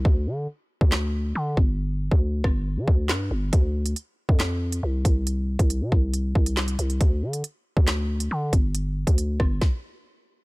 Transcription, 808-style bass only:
\new Staff \with { instrumentName = "808-style bass" } { \clef bass \time 4/4 \key g \dorian \tempo 4 = 138 d,8 d8 r8. d,4~ d,16 d8 g,,8~ | g,,8. d,8. g,,8. d16 d,8 g,8 g,,8 | d,4 r8. f,4~ f,16 c,8 c,8~ | c,8. c,8 c16 c,4 c,4 c,8 |
d,8 d8 r8. d,4~ d,16 d8 g,,8~ | g,,8. d,8. g,,8 r2 | }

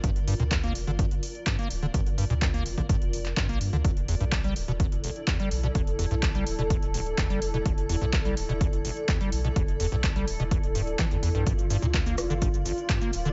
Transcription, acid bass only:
\new Staff \with { instrumentName = "Acid bass" } { \clef bass \time 4/4 \key g \lydian \tempo 4 = 126 g,16 r16 g,16 bes,16 f,16 bes16 r16 d16 g,16 r8. g,16 bes16 r16 d16 | g,16 r16 g,16 bes,16 f,16 bes16 r16 d16 g,16 r8. g,16 bes16 r16 d16 | e,16 r16 e,16 g,16 d,16 g16 r16 b,16 e,16 r16 e,,16 r16 e,16 g16 r16 b,16 | e,16 r16 e,16 g,16 d,16 g16 r16 b,16 e,16 r16 e,,16 r16 e,16 g16 r16 b,16 |
e,16 r16 e,16 g,16 d,16 g16 r16 b,16 e,16 r16 e,,16 r16 e,16 g16 r16 b,16 | e,16 r16 e,16 g,16 d,16 g16 r16 b,16 e,16 r16 g,16 r16 e16 e,16 e,16 g,16 | r8 g,16 bes,16 f,16 bes16 r16 d16 g,16 r16 g,,16 r16 g,16 bes16 r16 d16 | }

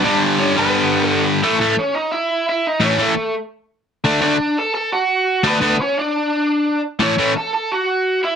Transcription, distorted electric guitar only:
\new Staff \with { instrumentName = "Distorted electric guitar" } { \clef bass \time 4/4 \key a \lydian \tempo 4 = 172 <g, d g>4. <g, d g>2~ <g, d g>8 | <a, e a>8 <a, e a>8 r2. | <a, e a>8 <a, e a>8 r2 r8 <d a d'>8 | <d a d'>8 r2. <d a d'>8 |
<d a d'>8 r2. r8 | <a, e a>8 <a, e a>8 r2. | }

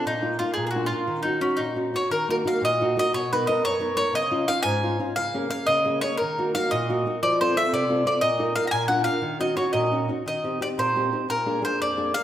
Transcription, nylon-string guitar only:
\new Staff \with { instrumentName = "Nylon-string guitar" } { \time 6/8 \key ees \minor \tempo 4. = 118 bes,8 <bes ees' f'>8 <bes ees' f'>8 bes,8 <bes d' f'>8 <bes d' f'>8 | ees8 <des' ees' ges'>8 <des' ees' ges'>8 bes,8 <des' ees' ges'>8 <des' ees' ges'>8 | ees8 <bes ees' ges'>8 <bes ees' ges'>8 bes,8 <bes ees' ges'>8 <bes ees' ges'>8 | b,8 <b dis' ais'>8 <b dis' ais'>8 fis,8 <b dis' ais'>8 <b dis' ais'>8 |
des8 <des' ees' f'>8 <des' ees' f'>8 aes,8 <des' ees' f'>8 <des' ees' f'>8 | des8 <bes des' aes'>8 <bes des' aes'>8 des8 <bes des' aes'>8 <bes des' aes'>8 | ees8 <bes ees' ges'>8 <bes ees' ges'>8 bes,8 <bes ees' ges'>8 <bes ees' ges'>8 | f8 <c' f' a'>8 <c' f' a'>8 c8 <c' f' a'>8 <c' f' a'>8 |
bes,8 <ees' f' bes'>8 <ees' f' bes'>8 bes,8 <d' f' bes'>8 <d' f' bes'>8 | ees8 <des' ees' ges'>8 <des' ees' ges'>8 bes,8 <des' ees' ges'>8 <des' ees' ges'>8 | \key ees \major ees8 <c' ees' g'>8 <c' ees' g'>8 bes,8 <c' ees' g'>8 <c' ees' g'>8 | bes,8 <bes d' aes'>8 <bes d' aes'>8 f,8 <bes d' aes'>8 <bes d' aes'>8 | }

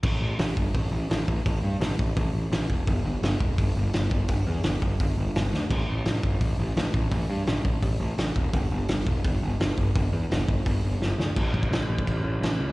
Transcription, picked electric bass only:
\new Staff \with { instrumentName = "Picked electric bass" } { \clef bass \time 4/4 \key g \lydian \tempo 4 = 170 a,,8 a,,8 a,,8 g,,8 a,,8 a,,8 a,,8 a,,8 | a,,8 g,8 a,,8 a,,8 a,,8 a,,8 a,,8 e,,8 | g,,8 g,,8 g,,8 e,,8 g,,8 g,,8 g,,8 g,,8 | g,,8 e,8 g,,8 g,,8 g,,8 g,,8 g,,8 d,8 |
a,,8 a,,8 a,,8 g,,8 a,,8 a,,8 a,,8 a,,8 | a,,8 g,8 a,,8 a,,8 a,,8 a,,8 a,,8 e,,8 | g,,8 g,,8 g,,8 e,,8 g,,8 g,,8 g,,8 g,,8 | g,,8 e,8 g,,8 g,,8 g,,8 g,,8 g,,8 d,8 |
a,,8 a,,8 a,,8 a,,8 a,,8 a,,8 a,,8 cis,8 | }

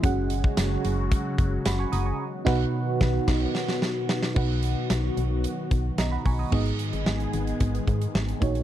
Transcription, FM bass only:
\new Staff \with { instrumentName = "FM bass" } { \clef bass \time 4/4 \key b \major \tempo 4 = 111 fis,,4 fis,,8 fis,,8. r16 fis,,8 fis,,8 fis,,8 | r8 b,,8 r8 b,,8 b,,8 r4. | b,,4 b,,8 b,,8. r16 b,,8 b,,8 b,,8 | gis,,8 r16 gis,,16 gis,,8 gis,,8 gis,,8 gis,8 gis,,8 ais,,8 | }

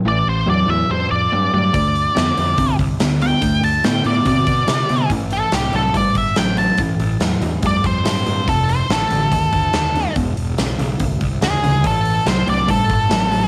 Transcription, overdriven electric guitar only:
\new Staff \with { instrumentName = "Overdriven electric guitar" } { \clef bass \time 4/4 \key a \minor \tempo 4 = 142 <a, e>4 <a, fis>8 <a, fis>8 <a, g>4 <a, fis>8 <a, fis>8 | <d a>4 <d b>8 <d b>8 <d c'>4 <d b>8 <d b>8 | <d a>4 <d b>8 <d b>8 <d c'>4 <d b>8 <d b>8 | <a, e>4 <a, fis>8 <a, fis>8 <a, g>4 <a, fis>8 <a, fis>8 |
<a, e>4 <a, fis>8 <a, fis>8 <a, g>4 <a, fis>8 <a, fis>8 | <f, c>4 <f, d>8 <f, d>8 <f, dis>4 <f, d>8 <f, d>8 | <e, b,>4 <e, cis>8 <e, cis>8 <e, d>4 <e, cis>8 <e, cis>8 | <a, e>4 <a, fis>8 <a, fis>8 <a, g>4 <a, fis>8 <a, fis>8 | }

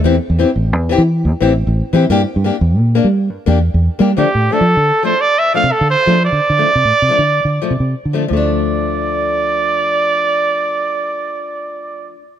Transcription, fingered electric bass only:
\new Staff \with { instrumentName = "Fingered electric bass" } { \clef bass \time 12/8 \key d \minor \tempo 4. = 116 e,8 r16 e,8 r16 a,,8 e,8. e8. e,16 r16 a,,8. a,,8 r16 e8 | g,8 r16 g,8 r16 e,8 bes,8. g8. g,16 r16 e,8. e,8 r16 g8 | d16 r16 a,8 r16 f8 d8 r2 c16 r16 d8 r16 f8~ | f16 d16 r16 d8 r16 c16 a,16 r16 c16 r16 d8. d8 r16 c16 c8 r16 d8. |
d,1.~ | d,1. | }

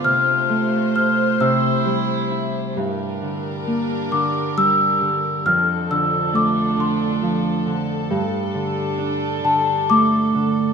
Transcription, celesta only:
\new Staff \with { instrumentName = "Celesta" } { \time 6/8 \key g \dorian \tempo 4. = 44 f'''4 f'''8 e'''4 r8 | r4. d'''8 e'''4 | f'''8 e'''8 d'''8 c'''4 r8 | r4. a''8 d'''4 | }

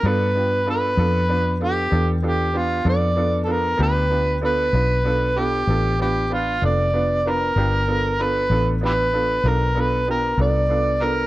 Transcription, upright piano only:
\new Staff \with { instrumentName = "Upright piano" } { \time 12/8 \key g \mixolydian \tempo 4. = 64 <b d' f' a'>8 <b d' f' g'>8 <b d' f' a'>8 <b d' f' a'>8 <b d' f' b'>8 <b d' f' a'>8 <b d' f' a'>8 <b d' f' a'>8 <b d' f' g'>8 <b d' f' a'>8 <b d' f' a'>8 <b d' f' a'>8 | <b d' f' g'>8 <b d' f' g'>8 <b d' f' a'>8 <b d' f' b'>8 <b d' f' a'>8 <b d' f' a'>8 <b d' f' a'>8 <b d' f' b'>8 <b d' f' b'>8 <b d' f' a'>8 <b d' f' b'>8 <b d' f' b'>8 | <b d' f' g'>8 <b d' f' a'>8 <b d' f' a'>8 <b d' f' a'>8 <b d' f' b'>8 <b d' f' a'>8 <b d' f' a'>8 <b d' f' a'>8 <b d' f' g'>8 <b d' f' a'>8 <b d' f' a'>8 <b d' f' a'>8 | }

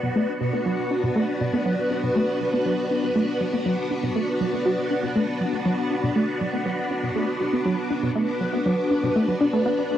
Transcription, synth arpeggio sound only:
\new Staff \with { instrumentName = "Synth arpeggio sound" } { \time 4/4 \key b \minor \tempo 4 = 120 b,16 a16 r16 b,16 b16 fis16 r16 d'16 b,16 a16 r16 b,16 b16 fis16 r16 d'16 | b,16 a16 r16 fis16 b16 fis16 r16 d'16 b,16 a16 r16 fis16 b16 fis16 r16 d'16 | b,16 a16 r16 fis16 b16 fis16 r16 d'16 b,16 a16 r16 fis16 b16 fis16 r16 d'16 | b,16 a16 r16 fis16 b16 fis16 r16 d'16 b,16 a16 r16 fis16 b16 fis16 r16 d'16 |
b,16 a16 r16 fis16 b16 fis16 r16 d'16 b,16 a16 fis16 d'16 a16 b16 r16 d'16 | }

